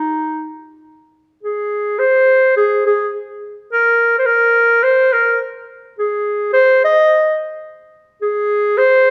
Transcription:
0.00 0.58 D#4 medium
1.43 2.00 G#4 medium
1.99 2.55 C5 loud
2.56 2.83 G#4 medium
2.87 3.11 G#4 medium
3.73 4.17 A#4 medium
4.19 4.28 C5 medium
4.26 4.85 A#4 medium
4.83 5.14 C5 loud
5.13 5.39 A#4 medium
5.99 6.50 G#4 medium
6.53 6.80 C5 loud
6.84 7.36 D#5 medium
8.22 8.79 G#4 loud
8.78 9.10 C5 loud

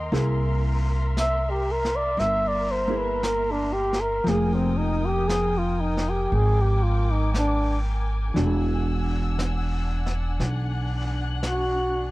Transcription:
0.00 0.12 G#3 medium
0.00 0.13 C4 soft
0.00 0.13 G4 soft
0.00 0.17 A#4 medium
0.00 8.31 A#4 medium
0.00 0.15 D#5 medium
0.00 2.14 A#5 medium
0.00 4.22 C6 medium
0.12 2.14 C2 medium
0.12 2.87 A#3 medium
0.12 2.89 E4 soft
0.12 2.90 G#4 medium
0.12 4.21 E5 medium
0.12 brush sweep soft
0.12 snare soft
1.17 1.51 E5 medium
1.17 brush sweep soft
1.17 snare soft
1.17 hi-hat pedal medium
1.50 1.73 G4 medium
1.72 1.97 A#4 medium
1.85 snare soft
1.96 2.21 D5 medium
2.17 4.20 G1 medium
2.17 2.49 E5 medium
2.17 4.24 A#5 medium
2.17 brush sweep soft
2.17 snare soft
2.48 2.73 D5 medium
2.71 2.99 C5 medium
2.88 4.26 A#3 soft
2.88 4.27 E4 soft
2.88 4.27 G#4 soft
2.98 3.25 B4 medium
3.23 3.53 A#4 medium
3.23 brush sweep soft
3.23 snare soft
3.23 hi-hat pedal medium
3.51 3.74 D4 medium
3.73 4.02 G4 medium
3.93 snare soft
4.00 4.30 A#4 medium
4.24 6.28 F1 medium
4.24 8.34 F3 soft
4.24 8.31 G5 medium
4.24 12.11 G#5 medium
4.24 6.28 D#6 medium
4.24 brush sweep soft
4.24 snare soft
4.28 8.37 A#3 soft
4.28 4.56 G#4 medium
4.34 8.36 G#4 soft
4.54 4.79 C4 medium
4.77 5.08 D#4 medium
5.06 5.29 G4 medium
5.27 5.59 G#4 medium
5.27 brush sweep soft
5.27 snare soft
5.27 hi-hat pedal medium
5.58 5.82 F4 medium
5.80 6.11 D#4 medium
5.97 snare soft
6.09 6.36 G4 medium
6.30 8.32 G#1 medium
6.30 8.33 D6 medium
6.30 brush sweep soft
6.35 6.63 G#4 medium
6.61 6.84 G4 medium
6.83 7.12 F4 medium
7.11 7.31 D#4 medium
7.34 brush sweep soft
7.34 snare soft
7.34 hi-hat pedal medium
7.38 7.77 D4 medium
8.34 10.37 E1 medium
8.34 12.11 E3 soft
8.34 12.11 D4 soft
8.34 12.11 D4 medium
8.34 12.11 F#4 soft
8.34 12.11 F#5 medium
8.34 10.39 E6 medium
8.34 brush sweep soft
8.34 snare soft
9.39 brush sweep soft
9.39 snare soft
9.39 hi-hat pedal medium
10.06 snare soft
10.40 12.11 B1 medium
10.40 12.11 F#6 medium
10.40 brush sweep soft
10.40 snare soft
11.43 brush sweep soft
11.43 snare medium
11.43 hi-hat pedal medium
11.48 12.08 F#4 medium

